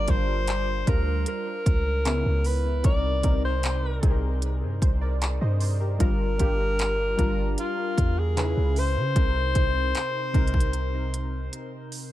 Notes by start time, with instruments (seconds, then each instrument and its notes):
Already playing: synth keys G3 D4 F4 A#4, alto saxophone D5
0.07 808-style bass G1, synth keys G3 D4 F4 C5, alto saxophone C5, kick, closed hi-hat
0.47 clap, closed hi-hat
0.86 808-style bass D2, synth keys G3 D4 F4 A#4, alto saxophone A#4, kick, closed hi-hat
1.26 alto saxophone A#4, closed hi-hat
1.66 808-style bass C#2, kick, closed hi-hat
2.05 synth keys C#3 B3 C#4 E4, clap, closed hi-hat
2.26 808-style bass C#2
2.44 alto saxophone B4, open hi-hat
2.83 808-style bass C2, synth keys C3 C4 D#4 A#4, alto saxophone D5, kick, closed hi-hat
3.22 808-style bass C2, synth keys C3 C4 D#4 A#4, kick, closed hi-hat
3.45 alto saxophone C5
3.63 clap, closed hi-hat
4.02 808-style bass C2, synth keys C3 C4 D#4 G#4, kick, closed hi-hat
4.10 synth keys A#4
4.42 closed hi-hat
4.63 808-style bass G2
4.82 808-style bass C2, synth keys C5, kick, closed hi-hat
5.01 synth keys A#4 D5
5.22 clap, closed hi-hat
5.41 808-style bass G2, synth keys C5 D#5
5.61 synth keys C5, open hi-hat
5.80 synth keys G4 A#4
5.98 808-style bass G1, synth keys G3 D4 F4 A#4, alto saxophone A#4, kick, closed hi-hat
6.38 808-style bass G1, synth keys G3 D4 F4 G4, kick, closed hi-hat
6.79 clap, closed hi-hat
7.17 808-style bass G1, synth keys G3 D4 F4 A#4, kick, closed hi-hat
7.58 alto saxophone F4, closed hi-hat
7.98 808-style bass E2, kick, closed hi-hat
8.19 alto saxophone G#4
8.36 synth keys C#3 C#4 D#4 B4, clap, closed hi-hat
8.44 synth keys E4
8.57 808-style bass C#2
8.76 alto saxophone C5, open hi-hat
8.96 808-style bass C#3
9.15 808-style bass C2, synth keys C3 C4 D#4 A#4, kick, closed hi-hat
9.54 808-style bass C2, synth keys C3 C4 D#4 C5, kick, closed hi-hat
9.95 clap, closed hi-hat
10.33 808-style bass C2, synth keys C3 C4 D#4 A#4, kick, closed hi-hat
10.47 closed hi-hat
10.54 kick
10.60 closed hi-hat
10.73 closed hi-hat
11.14 closed hi-hat
11.53 closed hi-hat
11.92 open hi-hat